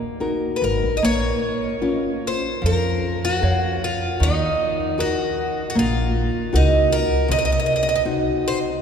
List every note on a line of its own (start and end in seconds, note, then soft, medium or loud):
0.00 0.17 A#3 medium
0.20 0.87 D#4 soft
0.20 0.87 F#4 soft
0.20 0.87 A#4 soft
0.56 0.63 B4 medium
0.62 0.81 G#1 medium
0.62 0.94 A#4 medium
0.83 1.01 A#1 medium
0.97 1.03 D#5 medium
1.03 1.30 A#1 medium
1.03 1.80 A#3 medium
1.03 1.80 C#5 loud
1.82 2.46 C#4 soft
1.82 2.46 F4 medium
1.82 2.46 A#4 soft
2.27 2.65 C5 medium
2.62 3.15 F2 medium
2.62 3.39 F3 medium
2.66 3.25 A#4 medium
3.25 3.84 F#4 medium
3.42 3.93 F2 medium
3.42 4.05 A#4 soft
3.42 4.05 C#5 medium
3.42 4.05 F5 soft
3.84 4.23 F4 medium
4.20 4.46 D#2 medium
4.20 4.96 D#3 medium
4.20 5.02 D#4 medium
4.98 5.60 D#4 soft
4.98 5.61 F#4 soft
4.98 5.66 F#4 medium
4.98 5.61 A#4 medium
5.70 5.77 F#4 medium
5.75 6.27 A#1 medium
5.75 6.51 A#3 medium
5.75 6.57 F4 medium
6.53 7.03 C#2 medium
6.53 7.14 D#4 medium
6.53 6.94 D#4 medium
6.53 7.14 F#4 soft
6.53 7.15 A#4 medium
6.92 7.31 A#4 medium
7.28 7.55 C2 medium
7.28 8.04 C3 medium
7.28 7.37 D#5 loud
7.39 7.44 D#5 medium
7.45 7.51 D#5 medium
7.52 7.59 D#5 medium
7.60 7.65 D#5 medium
7.66 7.73 D#5 medium
7.76 7.81 D#5 medium
7.83 7.88 D#5 medium
7.89 7.94 D#5 medium
7.96 8.02 D#5 medium
8.05 8.68 C4 medium
8.05 8.68 D#4 soft
8.05 8.68 F#4 medium
8.48 8.58 C5 medium